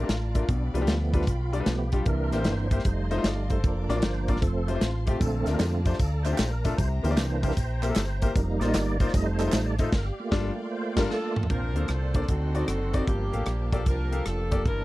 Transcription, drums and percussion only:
0.09 snare, closed hi-hat
0.35 kick, closed hi-hat
0.49 kick, closed hi-hat
0.75 closed hi-hat
0.87 snare, closed hi-hat
1.14 kick, closed hi-hat
1.21 snare
1.27 kick, closed hi-hat
1.53 closed hi-hat
1.66 snare, closed hi-hat
1.92 kick, closed hi-hat
2.06 kick, closed hi-hat
2.32 snare, closed hi-hat
2.44 snare, closed hi-hat
2.71 kick, closed hi-hat
2.79 snare
2.85 kick, closed hi-hat
3.11 closed hi-hat
3.24 snare, closed hi-hat
3.50 kick, closed hi-hat
3.64 kick, closed hi-hat
3.89 snare, closed hi-hat
4.02 snare, closed hi-hat
4.28 kick, closed hi-hat
4.36 snare
4.42 kick, closed hi-hat
4.68 closed hi-hat
4.81 snare, closed hi-hat
5.07 kick, closed hi-hat
5.21 kick, closed hi-hat, tambourine
5.46 snare, closed hi-hat, tambourine
5.59 snare, clap, closed hi-hat, tambourine
5.85 kick, closed hi-hat, tambourine
5.93 snare
5.99 kick, closed hi-hat, tambourine
6.26 clap, closed hi-hat, tambourine
6.38 snare, clap, closed hi-hat, tambourine
6.64 kick, closed hi-hat, tambourine
6.78 kick, closed hi-hat, tambourine
7.04 closed hi-hat, tambourine
7.17 snare, clap, closed hi-hat, tambourine
7.43 kick, closed hi-hat, tambourine
7.51 snare
7.57 kick, closed hi-hat, tambourine
7.83 clap, closed hi-hat, tambourine
7.96 snare, clap, closed hi-hat, tambourine
8.22 kick, closed hi-hat, tambourine
8.35 kick, closed hi-hat, tambourine
8.61 snare, closed hi-hat, tambourine
8.74 snare, clap, closed hi-hat, tambourine
9.00 kick, closed hi-hat, tambourine
9.08 snare
9.14 kick, closed hi-hat, tambourine
9.40 clap, closed hi-hat, tambourine
9.52 snare, clap, closed hi-hat, tambourine
9.79 kick, closed hi-hat, tambourine
9.92 kick, snare, crash
10.32 kick, snare
10.97 kick, snare, crash
11.10 snare
11.36 mid tom
11.43 floor tom
11.50 kick, closed hi-hat
11.76 closed hi-hat
11.88 cross-stick, closed hi-hat
12.14 kick, closed hi-hat
12.22 cross-stick
12.28 kick, closed hi-hat
12.55 closed hi-hat
12.68 cross-stick, closed hi-hat
12.94 kick, closed hi-hat
13.07 kick, closed hi-hat
13.34 closed hi-hat
13.46 cross-stick, closed hi-hat
13.72 kick, closed hi-hat
13.86 kick, closed hi-hat
14.13 closed hi-hat
14.26 cross-stick, closed hi-hat
14.52 kick, closed hi-hat
14.65 kick, closed hi-hat

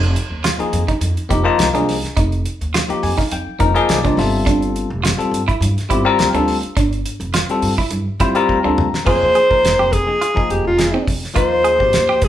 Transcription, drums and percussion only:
0.03 closed hi-hat
0.16 closed hi-hat
0.44 snare, closed hi-hat
0.60 closed hi-hat
0.73 closed hi-hat
0.88 kick, closed hi-hat
1.01 closed hi-hat
1.17 closed hi-hat
1.30 kick, closed hi-hat
1.59 snare, closed hi-hat
1.75 closed hi-hat
1.89 snare, open hi-hat
2.04 snare, closed hi-hat
2.17 kick, closed hi-hat
2.32 closed hi-hat
2.46 closed hi-hat
2.61 closed hi-hat
2.74 snare, closed hi-hat
2.90 closed hi-hat
3.03 open hi-hat
3.18 kick, snare
3.31 closed hi-hat
3.60 kick, closed hi-hat
3.76 closed hi-hat
3.89 snare, closed hi-hat
4.05 kick, closed hi-hat
4.19 snare, open hi-hat
4.47 kick, closed hi-hat
4.62 closed hi-hat
4.76 closed hi-hat
5.05 snare, closed hi-hat
5.20 closed hi-hat
5.34 closed hi-hat
5.49 kick, closed hi-hat
5.62 closed hi-hat
5.78 snare, closed hi-hat
5.90 kick, closed hi-hat
6.19 snare, closed hi-hat
6.34 closed hi-hat
6.48 open hi-hat
6.63 closed hi-hat
6.77 kick, closed hi-hat
6.93 closed hi-hat
7.06 closed hi-hat
7.21 closed hi-hat
7.34 snare, closed hi-hat
7.49 closed hi-hat
7.62 open hi-hat
7.78 kick
7.91 closed hi-hat
8.20 kick, closed hi-hat
8.35 closed hi-hat
8.49 kick
8.78 mid tom
8.94 snare
9.06 kick, crash
9.35 closed hi-hat
9.51 kick
9.65 snare, closed hi-hat
9.93 kick, closed hi-hat
10.22 closed hi-hat
10.37 kick
10.50 closed hi-hat
10.79 snare, closed hi-hat
11.07 kick, open hi-hat
11.24 snare
11.36 kick, closed hi-hat
11.65 closed hi-hat
11.80 kick
11.93 snare, closed hi-hat
12.22 kick, closed hi-hat

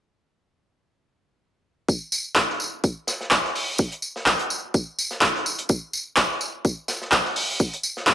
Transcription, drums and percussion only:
1.89 kick, tambourine
2.12 tambourine
2.36 kick, snare, clap, tambourine
2.50 snare
2.60 tambourine
2.84 kick, tambourine
3.07 snare, tambourine
3.21 snare
3.31 kick, snare, clap, tambourine
3.44 snare
3.55 open hi-hat
3.78 kick, tambourine
3.92 closed hi-hat
4.02 tambourine
4.16 snare
4.26 kick, snare, clap, tambourine
4.39 closed hi-hat
4.50 tambourine
4.74 kick, tambourine
4.99 tambourine
5.11 snare
5.21 kick, snare, clap, tambourine
5.35 snare
5.46 tambourine
5.59 closed hi-hat
5.69 kick, tambourine
5.93 tambourine
6.16 kick, snare, clap, tambourine
6.31 snare
6.41 tambourine
6.65 kick, tambourine
6.88 snare, tambourine
7.02 snare
7.12 kick, snare, clap, tambourine
7.25 snare
7.36 open hi-hat
7.60 kick, tambourine
7.73 closed hi-hat
7.83 tambourine
7.97 snare
8.07 kick, snare, clap, tambourine

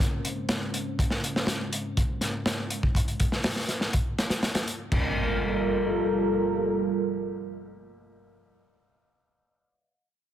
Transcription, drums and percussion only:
0.00 kick, closed hi-hat
0.25 closed hi-hat
0.49 snare, closed hi-hat
0.74 closed hi-hat
0.99 kick, closed hi-hat
1.10 snare
1.24 closed hi-hat
1.36 snare
1.47 snare, closed hi-hat
1.73 closed hi-hat
1.97 kick, closed hi-hat
2.21 snare, closed hi-hat
2.46 snare, closed hi-hat
2.70 closed hi-hat
2.83 kick
2.95 kick, closed hi-hat
3.08 closed hi-hat
3.20 kick, closed hi-hat
3.32 snare
3.44 snare, open hi-hat
3.56 snare
3.69 snare, closed hi-hat
3.81 snare
3.93 kick, closed hi-hat
4.18 snare, closed hi-hat
4.30 snare, closed hi-hat
4.43 snare, closed hi-hat
4.55 snare, closed hi-hat
4.68 closed hi-hat
4.92 kick, crash

